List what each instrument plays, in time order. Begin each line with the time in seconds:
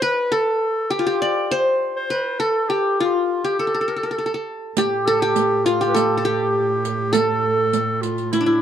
Already playing: qanun D5
0.02 qanun B4, clarinet B4
0.32 qanun A4, clarinet A4
0.90 qanun G4, clarinet G4
0.99 qanun F4
1.07 qanun G4
1.21 clarinet D5, qanun D5
1.51 qanun C5
1.96 clarinet C5
2.10 qanun B4
2.39 clarinet A4, qanun A4
2.69 clarinet G4, qanun G4
2.99 clarinet F4, qanun F4
3.06 clarinet G4
3.14 clarinet F4
3.45 qanun G4, clarinet G4
3.59 clarinet A4, qanun A4
3.67 qanun A4
3.74 qanun A4
3.81 qanun A4
3.88 qanun A4
3.96 qanun A4
4.03 qanun A4
4.11 qanun A4
4.18 qanun A4
4.26 qanun A4
4.34 qanun A4
4.77 cello A2, clarinet G4, qanun G4, riq
5.05 clarinet A4, qanun A4
5.21 clarinet G4, qanun G4
5.36 riq
5.65 clarinet F4, qanun F4, riq
5.81 qanun G4, riq
5.88 clarinet B4
5.95 qanun A4, clarinet A4, riq
6.18 qanun A4
6.25 clarinet G4, qanun G4
6.85 riq
7.13 clarinet A4, qanun A4, riq
7.73 riq
8.02 clarinet F4, riq
8.18 riq
8.32 clarinet E4, qanun E4, riq
8.41 qanun D4
8.45 clarinet E4, qanun E4